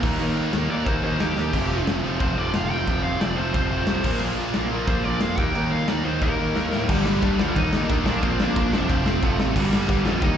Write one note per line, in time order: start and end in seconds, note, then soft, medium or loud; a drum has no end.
0.03 0.17 D#2 medium
0.03 0.20 D#3 medium
0.03 0.20 G3 loud
0.03 0.19 A#3 medium
0.03 0.19 D#4 loud
0.03 kick loud
0.03 crash loud
0.20 0.47 D#2 loud
0.20 0.35 D#3 medium
0.20 0.36 G3 medium
0.20 0.36 A#3 loud
0.20 0.37 D#4 loud
0.36 0.54 D#3 medium
0.36 0.53 G3 medium
0.36 0.53 A#3 medium
0.36 0.53 D#4 loud
0.53 0.67 D#2 loud
0.53 0.69 D#3 medium
0.53 0.70 G3 medium
0.53 0.70 A#3 medium
0.53 0.71 D#4 medium
0.53 snare loud
0.53 ride medium
0.70 0.83 D#2 medium
0.70 0.87 D#3 loud
0.70 0.87 G3 loud
0.70 0.86 A#3 medium
0.70 0.86 D#4 loud
0.70 0.87 D5 loud
0.86 1.00 D#2 medium
0.86 1.02 D#3 medium
0.86 1.03 G3 medium
0.86 1.03 A#3 medium
0.86 1.04 D#4 medium
0.86 1.03 C5 medium
0.86 kick loud
0.86 ride medium
1.03 1.17 D#2 medium
1.03 1.20 D#3 medium
1.03 1.20 G3 medium
1.03 1.19 A#3 loud
1.03 1.19 D#4 medium
1.03 1.20 C5 medium
1.20 1.34 D#2 medium
1.20 1.36 D#3 medium
1.20 1.36 G3 loud
1.20 1.37 A#3 medium
1.20 1.37 D#4 loud
1.20 1.85 G4 loud
1.20 snare loud
1.20 ride medium
1.37 1.51 D#2 medium
1.37 1.52 D#3 medium
1.37 1.53 G3 medium
1.37 1.53 A#3 medium
1.37 1.53 D#4 medium
1.37 snare medium
1.53 1.80 F1 loud
1.53 1.71 F2 medium
1.53 1.70 C3 loud
1.53 1.71 F3 loud
1.53 1.70 A3 loud
1.53 1.70 C4 loud
1.53 kick loud
1.53 crash medium
1.53 splash medium
1.70 1.86 F2 medium
1.70 1.86 C3 medium
1.70 1.87 F3 loud
1.70 1.88 A3 medium
1.70 1.88 C4 loud
1.87 2.01 F1 medium
1.87 2.04 F2 medium
1.87 2.03 C3 medium
1.87 2.04 F3 medium
1.87 2.02 A3 medium
1.87 2.02 C4 medium
1.87 snare loud
1.87 ride medium
2.03 2.17 F1 medium
2.03 2.18 F2 medium
2.03 2.19 C3 loud
2.03 2.20 F3 loud
2.03 2.20 A3 loud
2.03 2.20 C4 loud
2.19 2.34 F1 loud
2.19 2.37 F2 medium
2.19 2.36 C3 medium
2.19 2.37 F3 medium
2.19 2.36 A3 medium
2.19 2.35 C4 loud
2.19 2.38 C5 medium
2.19 kick loud
2.19 ride medium
2.36 2.51 F1 medium
2.36 2.53 F2 medium
2.36 2.53 C3 medium
2.36 2.54 F3 medium
2.36 2.54 A3 medium
2.36 2.55 C4 medium
2.36 2.54 D5 loud
2.54 2.67 F1 medium
2.54 2.71 F2 medium
2.54 2.70 C3 loud
2.54 2.71 F3 loud
2.54 2.69 A3 loud
2.54 2.69 C4 loud
2.54 2.71 F5 medium
2.54 snare loud
2.54 ride medium
2.70 2.84 F1 medium
2.70 2.86 F2 medium
2.70 2.86 C3 medium
2.70 2.88 F3 medium
2.70 2.87 A3 medium
2.70 2.88 C4 loud
2.70 3.03 G5 medium
2.87 3.14 F1 loud
2.87 3.04 F2 loud
2.87 3.03 C3 medium
2.87 3.04 F3 medium
2.87 3.02 A3 loud
2.87 3.02 C4 loud
2.87 kick loud
2.87 ride medium
3.03 3.19 F2 medium
3.03 3.20 C3 medium
3.03 3.21 F3 medium
3.03 3.21 A3 medium
3.03 3.21 C4 medium
3.03 3.20 F5 medium
3.21 3.35 F1 loud
3.21 3.37 F2 medium
3.21 3.37 C3 medium
3.21 3.37 F3 medium
3.21 3.36 A3 loud
3.21 3.36 C4 medium
3.21 3.36 D5 medium
3.21 snare loud
3.21 ride medium
3.37 3.51 F1 loud
3.37 3.53 F2 medium
3.37 3.53 C3 medium
3.37 3.53 F3 loud
3.37 3.54 A3 loud
3.37 3.54 C4 loud
3.37 3.52 C5 medium
3.53 3.68 F1 loud
3.53 3.71 F2 medium
3.53 3.71 C3 medium
3.53 3.70 F3 medium
3.53 3.70 A3 loud
3.53 3.69 C4 loud
3.53 4.19 C5 loud
3.53 kick loud
3.53 ride medium
3.70 3.84 F1 medium
3.70 3.86 F2 medium
3.70 3.87 C3 medium
3.70 3.87 F3 medium
3.70 3.87 A3 medium
3.70 3.88 C4 medium
3.87 4.01 C2 medium
3.87 4.03 F2 medium
3.87 4.04 C3 loud
3.87 4.04 F3 medium
3.87 4.04 A3 medium
3.87 4.04 C4 medium
3.87 snare loud
3.87 ride medium
4.04 4.18 A#1 medium
4.04 4.21 A#2 loud
4.04 4.21 F3 loud
4.04 4.21 A#3 loud
4.04 4.20 D4 loud
4.04 kick loud
4.04 crash loud
4.21 4.48 A#1 medium
4.21 4.36 A#2 medium
4.21 4.37 F3 loud
4.21 4.38 A#3 loud
4.21 4.37 D4 loud
4.37 4.54 A#2 medium
4.37 4.54 F3 medium
4.37 4.54 A#3 medium
4.37 4.53 D4 medium
4.54 4.68 A#1 loud
4.54 4.69 A#2 medium
4.54 4.70 F3 medium
4.54 4.71 A#3 medium
4.54 4.71 D4 medium
4.54 snare loud
4.54 ride medium
4.70 4.85 A#1 medium
4.70 4.88 A#2 loud
4.70 4.87 F3 loud
4.70 4.88 A#3 loud
4.70 4.86 D4 loud
4.87 5.01 A#1 loud
4.87 5.03 A#2 medium
4.87 5.04 F3 medium
4.87 5.05 A#3 medium
4.87 5.05 D4 loud
4.87 5.04 C5 loud
4.87 kick loud
4.87 ride medium
5.04 5.19 A#1 medium
5.04 5.22 A#2 medium
5.04 5.21 F3 medium
5.04 5.21 A#3 medium
5.04 5.20 D4 loud
5.04 5.21 D5 medium
5.21 5.36 F2 loud
5.21 5.38 A#2 medium
5.21 5.38 F3 medium
5.21 5.39 A#3 loud
5.21 5.37 D4 loud
5.21 5.38 F5 medium
5.21 snare loud
5.21 ride medium
5.38 5.52 D#2 loud
5.38 5.55 D#3 loud
5.38 5.54 G3 loud
5.38 5.54 A#3 loud
5.38 5.54 D#4 loud
5.38 5.71 G5 medium
5.38 kick loud
5.55 5.82 D#2 loud
5.55 5.70 D#3 medium
5.55 5.71 G3 loud
5.55 5.71 A#3 loud
5.55 5.72 D#4 loud
5.55 ride medium
5.71 5.88 D#3 medium
5.71 5.88 G3 medium
5.71 5.88 A#3 medium
5.71 5.87 D#4 medium
5.71 5.88 F5 medium
5.88 6.02 D#2 medium
5.88 6.03 D#3 medium
5.88 6.04 G3 medium
5.88 6.04 A#3 medium
5.88 6.05 D#4 medium
5.88 6.05 D5 medium
5.88 snare loud
5.88 ride medium
6.04 6.19 D#2 medium
6.04 6.22 D#3 loud
6.04 6.21 G3 loud
6.04 6.21 A#3 loud
6.04 6.20 D#4 loud
6.04 6.21 C5 medium
6.22 6.36 D#2 loud
6.22 6.37 D#3 medium
6.22 6.38 G3 medium
6.22 6.39 A#3 medium
6.22 6.39 D#4 loud
6.22 6.87 A#4 loud
6.22 kick loud
6.22 ride medium
6.39 6.53 D#2 medium
6.39 6.55 D#3 medium
6.39 6.55 G3 medium
6.39 6.55 A#3 medium
6.39 6.54 D#4 medium
6.55 6.69 D#2 medium
6.55 6.71 D#3 medium
6.55 6.71 G3 medium
6.55 6.72 A#3 loud
6.55 6.72 D#4 loud
6.55 snare medium
6.72 6.86 A2 medium
6.72 6.88 D#3 medium
6.72 6.88 G3 medium
6.72 6.88 A#3 medium
6.72 6.88 D#4 medium
6.72 snare medium
6.89 7.02 G1 loud
6.89 7.07 G2 loud
6.89 7.06 D3 loud
6.89 7.36 G3 medium
6.89 7.06 G3 loud
6.89 7.05 A#3 loud
6.89 7.05 D4 loud
6.89 7.39 G4 medium
6.89 kick loud
6.89 crash loud
7.06 7.20 G1 medium
7.06 7.21 G2 medium
7.06 7.21 D3 medium
7.06 7.22 G3 medium
7.06 7.22 A#3 loud
7.06 7.23 D4 medium
7.06 snare loud
7.22 7.40 G2 loud
7.22 7.36 G2 loud
7.22 7.40 D3 loud
7.22 7.40 G3 loud
7.22 7.39 A#3 loud
7.22 7.38 D4 loud
7.22 kick loud
7.22 ride medium
7.39 7.53 D2 loud
7.39 7.56 G2 medium
7.39 7.56 D3 medium
7.39 7.55 F3 medium
7.39 7.55 G3 loud
7.39 7.55 A#3 loud
7.39 7.55 D4 loud
7.39 7.56 F4 loud
7.39 snare loud
7.56 7.83 D#2 loud
7.56 7.73 D#3 medium
7.56 7.72 G3 loud
7.56 7.72 A#3 loud
7.56 7.82 D#4 loud
7.56 7.71 D#4 loud
7.56 7.79 D#5 medium
7.56 kick loud
7.56 ride medium
7.73 7.89 D#3 medium
7.73 7.89 G3 medium
7.73 7.90 A#3 medium
7.73 7.90 D#4 medium
7.73 snare loud
7.81 8.05 D4 loud
7.81 8.05 D5 medium
7.90 8.03 D#2 loud
7.90 8.05 D#3 loud
7.90 8.05 G3 loud
7.90 8.06 A#3 loud
7.90 8.06 D#4 loud
7.90 kick loud
7.90 ride loud
8.06 8.19 A#1 loud
8.06 8.23 A#2 loud
8.06 8.22 F3 loud
8.06 8.22 A#3 loud
8.06 8.22 D4 medium
8.06 8.21 D4 loud
8.06 8.22 D5 medium
8.06 snare loud
8.22 8.36 A#1 loud
8.22 8.38 A#2 loud
8.22 8.39 F3 loud
8.22 8.39 A#3 loud
8.22 8.49 C4 loud
8.22 8.40 D4 loud
8.22 8.47 C5 medium
8.22 kick loud
8.22 ride medium
8.39 8.53 A#1 loud
8.39 8.55 A#2 medium
8.39 8.55 F3 medium
8.39 8.55 A#3 medium
8.39 8.54 D4 loud
8.39 snare loud
8.49 8.73 D4 loud
8.49 8.72 D5 medium
8.55 8.70 A#1 loud
8.55 8.72 A#2 medium
8.55 8.72 F3 medium
8.55 8.72 A#3 loud
8.55 8.71 D4 loud
8.55 kick loud
8.55 ride medium
8.72 8.86 F1 medium
8.72 8.89 F2 loud
8.72 8.89 C3 loud
8.72 8.88 F3 loud
8.72 8.88 A3 loud
8.72 8.88 C4 loud
8.72 8.89 D4 loud
8.72 8.89 D5 medium
8.72 snare loud
8.89 9.16 F1 loud
8.89 9.04 F2 medium
8.89 9.05 C3 loud
8.89 9.05 F3 loud
8.89 9.05 A3 loud
8.89 9.06 C4 loud
8.89 9.08 D4 loud
8.89 9.05 D5 medium
8.89 kick loud
8.89 ride medium
9.05 9.22 F2 medium
9.05 9.21 C3 medium
9.05 9.21 F3 medium
9.05 9.20 A3 loud
9.05 9.20 C4 medium
9.05 9.24 C4 loud
9.05 9.22 C5 medium
9.05 snare loud
9.21 9.36 F1 medium
9.21 9.37 F2 loud
9.21 9.37 C3 loud
9.21 9.37 F3 medium
9.21 9.38 A3 loud
9.21 9.48 A3 loud
9.21 9.38 C4 loud
9.21 9.47 A4 medium
9.21 kick loud
9.21 ride medium
9.38 9.53 A1 loud
9.38 9.54 F2 medium
9.38 9.54 C3 loud
9.38 9.54 F3 medium
9.38 9.55 A3 loud
9.38 9.55 C4 loud
9.38 snare loud
9.55 9.69 G1 loud
9.55 9.72 G2 loud
9.55 9.71 D3 loud
9.55 9.71 G3 loud
9.55 10.19 G3 medium
9.55 9.70 A#3 loud
9.55 9.70 D4 loud
9.55 10.08 G4 loud
9.55 kick loud
9.55 crash loud
9.71 9.87 G1 loud
9.71 9.87 G2 medium
9.71 9.88 D3 medium
9.71 9.88 G3 medium
9.71 9.88 A#3 loud
9.71 9.89 D4 loud
9.71 snare loud
9.88 10.06 G2 loud
9.88 10.02 G2 loud
9.88 10.05 D3 loud
9.88 10.04 G3 loud
9.88 10.04 A#3 loud
9.88 10.04 D4 loud
9.88 kick loud
9.88 ride medium
10.05 10.20 F2 loud
10.05 10.22 G2 medium
10.05 10.21 D3 medium
10.05 10.21 G3 loud
10.05 10.21 A#3 loud
10.05 10.21 D4 loud
10.05 10.25 F4 loud
10.05 snare loud
10.22 10.37 D#2 loud
10.22 10.37 D#3 loud
10.22 10.37 G3 loud
10.22 10.37 A#3 loud
10.22 10.37 D#4 loud
10.22 10.37 D#5 medium
10.22 kick loud
10.22 ride medium